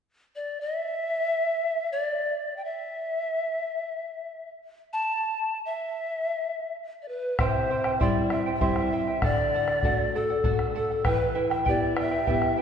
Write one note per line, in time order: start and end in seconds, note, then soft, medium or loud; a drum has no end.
0.35 0.62 D5 medium
0.61 1.92 E5 medium
1.92 2.58 D5 medium
2.57 2.66 G5 soft
2.65 4.49 E5 medium
4.93 5.60 A5 medium
5.66 6.73 E5 medium
7.02 7.10 D5 soft
7.08 7.42 B4 medium
7.39 7.98 C3 medium
7.39 7.69 E4 medium
7.39 7.70 G4 medium
7.39 7.70 C5 medium
7.39 8.02 C5 medium
7.39 7.69 E5 medium
7.39 7.70 G5 medium
7.39 bombo rim medium
7.39 bombo low medium
7.70 7.85 E4 medium
7.70 7.84 C5 medium
7.70 7.85 E5 medium
7.70 7.84 G5 medium
7.84 8.00 E4 soft
7.84 8.00 C5 soft
7.84 8.00 G5 soft
7.84 bombo rim medium
8.00 8.49 G3 soft
8.00 8.49 C4 soft
8.00 8.49 E4 soft
8.00 8.30 E4 medium
8.00 8.31 G4 medium
8.00 8.31 C5 medium
8.00 8.30 D5 medium
8.00 8.30 E5 medium
8.00 8.31 G5 medium
8.00 bombo low medium
8.30 8.46 E4 soft
8.30 8.45 C5 medium
8.30 8.53 E5 medium
8.30 8.46 E5 soft
8.30 8.45 G5 medium
8.30 bombo rim medium
8.46 8.60 E4 soft
8.46 8.60 C5 soft
8.46 8.60 G5 medium
8.55 8.64 G5 medium
8.61 9.10 G3 soft
8.61 9.10 C4 soft
8.61 8.91 E4 medium
8.61 9.10 E4 soft
8.61 8.92 G4 medium
8.61 8.92 C5 medium
8.61 8.91 E5 medium
8.61 9.26 E5 medium
8.61 8.92 G5 medium
8.61 bombo rim soft
8.61 bombo low medium
8.76 bombo rim medium
8.92 9.07 E4 soft
8.92 9.07 C5 medium
8.92 9.07 E5 soft
8.92 9.06 G5 medium
9.07 9.23 E4 soft
9.07 9.23 C5 soft
9.07 9.22 G5 soft
9.22 9.81 D3 medium
9.22 9.53 A4 medium
9.22 9.53 D5 medium
9.22 10.17 D5 medium
9.22 9.54 F#5 medium
9.22 bombo rim medium
9.22 bombo low medium
9.54 9.69 A4 medium
9.54 9.69 D5 medium
9.54 9.68 F#5 medium
9.68 9.84 D5 soft
9.68 9.84 F#5 soft
9.68 bombo rim medium
9.83 10.32 A3 soft
9.83 10.32 D4 soft
9.83 10.33 F#4 soft
9.83 10.14 A4 medium
9.83 10.14 D5 medium
9.83 10.15 F#5 medium
9.83 bombo low medium
10.15 10.75 A4 medium
10.15 10.30 A4 soft
10.15 10.30 D5 medium
10.15 10.29 F#5 medium
10.30 10.43 D5 soft
10.30 10.43 F#5 medium
10.44 10.93 A3 soft
10.44 10.94 D4 soft
10.44 10.94 F#4 soft
10.44 10.74 A4 medium
10.44 10.74 D5 medium
10.44 10.74 F#5 medium
10.44 bombo rim soft
10.44 bombo low medium
10.59 bombo rim soft
10.75 10.90 A4 medium
10.75 11.04 A4 medium
10.75 10.90 D5 medium
10.75 10.89 F#5 medium
10.90 11.04 D5 soft
10.90 11.04 F#5 soft
11.04 11.65 E3 medium
11.04 11.34 E4 medium
11.04 11.35 G4 medium
11.04 11.34 B4 medium
11.04 11.37 B4 medium
11.04 11.34 E5 medium
11.04 11.34 G5 medium
11.04 bombo rim medium
11.04 bombo low medium
11.35 11.51 E4 medium
11.35 11.50 B4 medium
11.35 11.51 E5 medium
11.35 11.49 G5 medium
11.50 11.65 E4 soft
11.50 11.65 B4 soft
11.50 11.65 G5 soft
11.50 bombo rim soft
11.65 12.16 B3 soft
11.65 11.95 E4 medium
11.65 12.16 E4 soft
11.65 11.96 G4 medium
11.65 12.16 G4 medium
11.65 11.96 B4 medium
11.65 11.95 E5 medium
11.65 11.96 G5 medium
11.65 bombo low medium
11.69 11.96 D5 medium
11.96 12.12 E4 soft
11.96 12.11 B4 medium
11.96 12.12 E5 medium
11.96 12.10 G5 medium
11.96 bombo rim medium
12.00 12.56 E5 medium
12.11 12.26 E4 soft
12.11 12.26 B4 soft
12.11 12.26 G5 soft
12.26 12.62 B3 soft
12.26 12.56 E4 medium
12.26 12.62 E4 soft
12.26 12.57 G4 medium
12.26 12.62 G4 soft
12.26 12.56 B4 medium
12.26 12.55 E5 medium
12.26 12.57 G5 medium
12.26 bombo rim soft
12.26 bombo low medium
12.42 bombo rim soft
12.57 12.62 E4 medium
12.57 12.62 B4 medium
12.57 12.62 E5 soft
12.57 12.62 G5 medium